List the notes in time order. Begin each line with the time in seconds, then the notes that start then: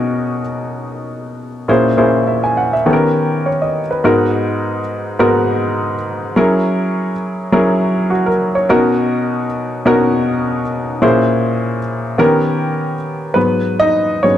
Already playing: B2 C#4 D#4 F#4 A#4
1.68 A#2 C#4 E4 G#4 C5
1.97 A#2 C#4 E4 G#4 C5
2.27 E5
2.44 G#5
2.57 F#5
2.73 E5
2.86 D#3 B3 C#4 G4 A4
2.93 A#4
3.46 C#5
3.62 D#5
3.91 B4
4.04 G#2 B3 D#4 F#4 A#4
5.19 G#2 B3 D#4 F#4 A#4
6.36 F#3 C#4 E4 G#4 A#4
7.52 F#3 C#4 E4 G#4 A#4
8.10 F#4
8.26 A#4
8.55 C#5
8.69 B2 C#4 D#4 F#4 A#4
9.85 B2 C#4 D#4 F#4 A#4
11.02 A#2 C#4 E4 G#4 C5
12.18 D#3 B3 C#4 G4 A#4
13.34 G#2 F#3 B3 B4
13.80 D#4 D#5
14.23 G#2 F#3 B3 C#4 C#5